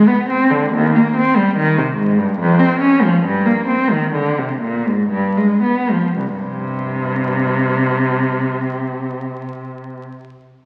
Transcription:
cello
0.08 B3
0.29 C4
0.50 D3
0.74 D#2
0.96 A#3
1.16 C4
1.37 G3
1.57 D#3
1.77 C3
1.96 G#2
2.18 G2
2.39 F2
2.59 C4
2.80 C#4
3.03 F3
3.24 G2
3.46 A#3
3.68 C4
3.91 D#3
4.14 D3
4.38 C3
4.62 A#2
4.86 G#2
5.10 G2
5.37 G#3
5.63 B3
5.91 F3
6.16 C2
6.36 G2 C3

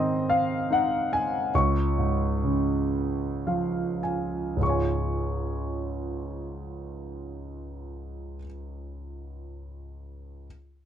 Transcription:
grand piano
Already playing: G#2 D#3 C4 C5 D#5
0.30 F5
0.71 D#4 F#5
1.13 G#5
1.55 C#2 C#6
1.98 G#2
2.44 C#3
3.47 F3 F5
4.03 G#5
4.57 C#2 G#2
4.61 G#3 F4 C#6
4.67 C#5 G#5

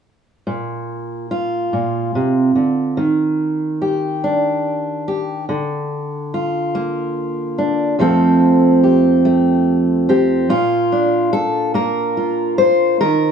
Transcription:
steel-string acoustic guitar
0.47 A#2
1.31 F4
1.73 A#2
2.15 C3
2.55 D3
2.97 D#3
3.82 G4
4.24 D4
5.08 G4
5.49 D3
6.34 F4
6.75 A#3
7.58 D4
7.99 F2 F3 A3 C4 A4
8.84 G4
9.25 A3
10.09 C4 G4
10.49 A#2 F4
10.92 D4
11.33 A4
11.74 A#3 A#4
12.17 F4
12.58 C5
13.01 D#3 A#4

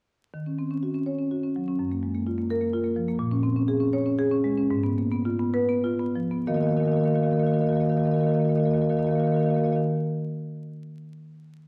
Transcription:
marimba
0.34 D#3
0.46 C#4
0.59 C4
0.71 C#4
0.83 F#4
0.95 C#4
1.06 C#5
1.19 C#4
1.31 F#4
1.44 C#4
1.56 F#3
1.68 C#4
1.79 F#2
1.91 A#3
2.03 G#3
2.14 A#3
2.26 F4
2.38 A#3
2.50 A#4
2.61 A#3
2.73 F4
2.84 A#3
2.96 F3
3.08 A#3
3.19 A#2
3.31 C#4
3.43 C4
3.56 C#4
3.68 G#4
3.80 C#4
3.93 C#5
4.06 C#4
4.19 G#4
4.31 C#4
4.44 G#3
4.58 C#4
4.70 G#2
4.83 B3
4.98 A#3
5.11 B3
5.25 F4
5.39 B3
5.54 B4
5.69 B3
5.84 F4
5.99 B3
6.15 F3
6.31 B3
6.47 D#3 A#3 F#4 A#4 D#5 F5
6.54 D#3 A#3 F#4 A#4 D#5 F5
6.60 A#3 F#4 A#4 D#5 F5
6.67 D#3 F#4 A#4 D#5 F5
6.72 A#3 F5
6.77 D#3 A#3 F#4 A#4 D#5 F5
6.83 F#4 A#4 D#5 F5
6.87 D#3 A#3 A#4
6.92 F#4 D#5 F5
6.96 D#3 A#3 A#4 D#5 F5
7.01 F#4 A#4
7.05 D#3 A#3 F#4 D#5 F5
7.11 A#3 A#4 D#5 F5
7.15 D#3 F#4 A#4
7.20 A#3 F#4 D#5 F5
7.25 D#3 A#4 F5
7.30 D#3 A#3 F#4 A#4 D#5 F5
7.37 A#3 F#4 A#4 D#5 F5
7.43 D#3 F#4 A#4 D#5 F5
7.48 A#3 D#5
7.53 D#3 A#3 F#4 A#4 F5
7.59 D#3 F#4 A#4 D#5 F5
7.64 A#3 D#5 F5
7.68 D#3 F#4 A#4
7.72 A#3 A#4 D#5 F5
7.77 D#3 A#3 F#4 F5
7.81 F#4 A#4 D#5
7.87 D#3 A#3 A#4 D#5 F5
7.92 F#4 F5
7.96 D#3 A#3 F#4 A#4 D#5 F5
8.03 D#3 A#3 F#4 A#4 D#5 F5
8.11 A#3 F#4 A#4 D#5 F5
8.16 D#3 A#4 D#5
8.21 A#3 F#4 F5
8.25 D#3 F#4 A#4 D#5 F5
8.32 D#3 A#3 A#4 D#5 F5
8.37 A#3 F#4 D#5
8.41 D#3 F#4 A#4 F5
8.48 A#3 A#4 D#5 F5
8.52 D#3 F#4 D#5 F5
8.57 A#3 F#4 A#4
8.62 D#3 A#3 A#4 D#5 F5
8.67 F#4 D#5 F5
8.73 D#3 A#3 F#4 A#4 F5
8.78 F#4 A#4 D#5
8.82 D#3 A#3 D#5 F5
8.89 D#3 A#3 F#4 A#4 D#5 F5
8.96 D#3 A#3 F#4 A#4 D#5 F5
9.03 A#3 F#4 A#4 D#5 F5
9.08 D#3 A#4 F5
9.12 A#3 F#4 D#5
9.17 D#3 F#4 A#4 D#5 F5
9.23 D#3 A#3 F#4 A#4 D#5 F5
9.30 A#3 F#4 A#4 F5
9.35 D#3 A#4 D#5 F5
9.41 A#3 F#4 D#5 F5
9.46 D#3 A#3 F#4 A#4
9.50 A#4 D#5 F5
9.56 D#3 A#3 F#4 D#5 F5
9.61 A#3 A#4 D#5 F5
9.66 D#3 F#4 A#4
9.70 A#3 F#4 D#5 F5
9.75 D#3 A#4 F5

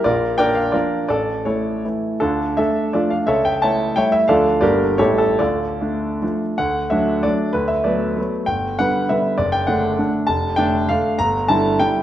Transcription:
grand piano
0.04 A#1 F4 A#4 D5
0.38 A#3 D4 A#4 D5 G5
0.55 F5
0.72 F3 A#3 D4 F4 A#4 D5
1.08 A1 A4 D5
1.45 A3 E4 A4 C#5
1.84 E3 A3 E4
2.20 D2 D4 F4 A4
2.57 A3 D4 A4 E5
2.93 F3 A3 D4 F4 A4 D5
3.10 F5
3.27 C#2 A4 C#5 E5
3.45 G5
3.62 A3 E4 C#5 E5 A5
3.96 G3 A3 E4 C#5 E5 G5
4.12 E5
4.28 D2 F3 A3 D4 A4 D5 F5
4.61 G1 G3 A#3 D4 G4 A#4 D5
4.98 A1 G3 A3 E4 G4 A4 C#5
5.18 A4
5.39 D2 F4 A4 D5
5.81 A3 D4
6.22 F3 A3 D4
6.58 D2 F#5
6.90 F#3 A3 D4 E5
7.23 F#3 A3 D4 D5
7.53 D2 B4
7.68 E5
7.84 F#3 A3 B3 D5
8.17 F#3 A3 B3
8.46 G1 G5
8.79 D3 G3 B3 F#5
9.09 D3 G3 B3 E5
9.38 F#1 D5
9.52 G5
9.67 D3 A3 D4 F#5
9.99 D3 A3 D4
10.27 F1 A5
10.56 D3 A3 D4 G5
10.89 D3 A3 D4 F5
11.19 G1 A#5
11.48 D3 G3 E4 A5
11.79 D3 G3 E4 G5

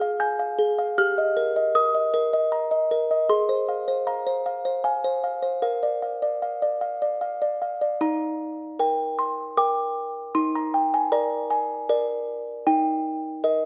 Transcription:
music box
Already playing: F4 G#4 F6
0.01 F5
0.20 G#5 G6
0.39 F5
0.59 G#4
0.79 F5
0.98 G4 F6
1.18 D#5
1.37 A#4
1.56 D#5
1.75 A#4 D#6
1.95 D#5
2.14 A#4
2.33 D#5
2.52 A#5
2.71 D#5
2.91 A#4
3.11 D#5
3.29 G#4 C6
3.49 C5
3.69 F5
3.88 C5
4.07 F5 A#5
4.27 C5
4.46 F5
4.65 C5
4.84 F5 G#5
5.04 C5
5.24 F5
5.43 C5
5.62 A#4 F5
5.83 D5
6.02 F5
6.22 D5
6.42 F5
6.62 D5
6.81 F5
7.02 D5
7.21 F5
7.42 D5
7.62 F5
7.82 D5
8.01 D#4 A#5
8.79 A#4 G5
9.19 C6
9.57 A#4 G5 D6
10.35 D#4 C6
10.55 A#5
10.74 G5
10.94 G#5
11.12 A#4 D5 A#5
11.50 G#5
11.89 A#4 D5
12.67 D#4 G5
13.44 A#4 D#5

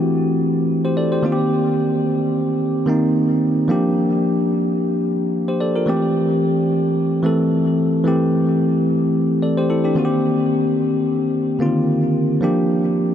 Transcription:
tine electric piano
Already playing: E3 A3 C4 E4 F#4 G4
0.85 G4 C5
0.97 A4 D5
1.12 G4 C5
1.23 D#3 A#3 C4 F4
1.32 G4
2.86 D#3 A#3 C4 D#4
3.68 F3 A#3 D4 G4
5.48 G4 C5
5.60 A4 D5
5.76 F4 A#4
5.86 E3 A3 C4 G4
7.23 E3 A3 C4 A4
8.04 E3 A3 C4 G4
9.42 A4 D5
9.57 G4 C5
9.70 E4 A4
9.85 D4 G4
9.95 D#3 A#3 C4 F#4
10.05 G4
11.59 D3 A#3 C4 F4
11.65 D#3
12.41 F3 A#3 D4 G4

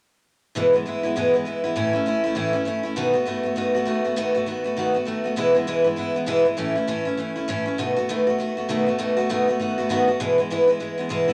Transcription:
steel-string acoustic guitar
0.55 E2 B2 E3 G#3 B3 E4
0.73 E3 G#3 B3 E4
0.86 E3 G#3 B3 E4
1.03 E3 G#3 B3 E4
1.16 E2 B2 E3 G#3 B3 E4
1.34 E3 G#3 B3 E4
1.45 E3 G#3 B3 E4
1.64 E3 G#3 B3 E4
1.76 A2 E3 A3 C#4 E4
1.93 A3 C#4 E4
2.06 E3 A3 C#4 E4
2.24 A3 C#4 E4
2.35 A2 E3 A3 C#4 E4
2.53 A3 C#4 E4
2.65 E3 A3 C#4 E4
2.83 A3 C#4 E4
2.96 B2 D#3 A3 B3 F#4
3.14 A3 B3 F#4
3.26 D#3 A3 B3 F#4
3.43 A3 B3 F#4
3.56 B2 D#3 A3 B3 F#4
3.75 A3 B3 F#4
3.85 D#3 A3 B3 F#4
4.05 A3 B3 F#4
4.16 B2 D#3 A3 B3 F#4
4.35 A3 B3 F#4
4.46 D#3 A3 B3 F#4
4.64 A3 B3 F#4
4.77 B2 D#3 A3 B3 F#4
4.94 A3 B3 F#4
5.05 D#3 A3 B3 F#4
5.24 A3 B3 F#4
5.36 E2 B2 E3 G#3 B3 E4
5.55 E3 G#3 B3 E4
5.67 E2 B2 E3 G#3 B3 E4
5.84 E3 G#3 B3 E4
5.96 E3 G#3 B3 E4
6.14 E3 G#3 B3 E4
6.26 E2 B2 E3 G#3 B3 E4
6.45 E3 G#3 B3 E4
6.57 A2 E3 A3 C#4 E4
6.75 A3 C#4 E4
6.87 A2 E3 A3 C#4 E4
7.05 A3 C#4 E4
7.17 E3 A3 C#4 E4
7.36 A3 C#4 E4
7.48 A2 E3 A3 C#4 E4
7.66 A3 C#4 E4
7.78 B2 D#3 A3 B3 F#4
7.97 A3 B3 F#4
8.09 B2 D#3 A3 B3 F#4
8.27 A3 B3 F#4
8.38 D#3 A3 B3 F#4
8.57 A3 B3 F#4
8.69 B2 D#3 A3 B3 F#4
8.86 A3 B3 F#4
8.99 B2 D#3 A3 B3 F#4
9.17 A3 B3 F#4
9.29 B2 D#3 A3 B3 F#4
9.48 A3 B3 F#4
9.60 D#3 A3 B3 F#4
9.78 A3 B3 F#4
9.89 B2 D#3 A3 B3 F#4
10.08 A3 B3 F#4
10.20 E2 B2 E3 G#3 B3 E4
10.38 E3 G#3 B3 E4
10.50 E2 B2 E3 G#3 B3 E4
10.68 G#3 B3 E4
10.80 E3 G#3 B3 E4
10.98 E3 G#3 B3 E4
11.09 E2 B2 E3 G#3 B3 E4
11.28 G#3 B3 E4

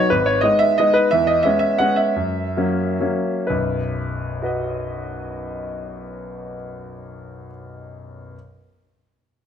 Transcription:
grand piano
Already playing: C#5
0.10 G#1 B4
0.26 C#5
0.41 G#3 B3 D#4 D#5
0.59 E5
0.78 G#3 B3 D#4 D#5
0.94 B4
1.11 E2 E5
1.27 D#5
1.43 G#3 B3 C#4 E5
1.59 E5
1.78 G#3 B3 C#4 F#5
1.96 E5
2.16 F#2
2.57 F#3 A#3 C#4
3.00 F#3 A#3 C#4
3.47 B1 F#2 B4
4.42 F#4 B4 D#5

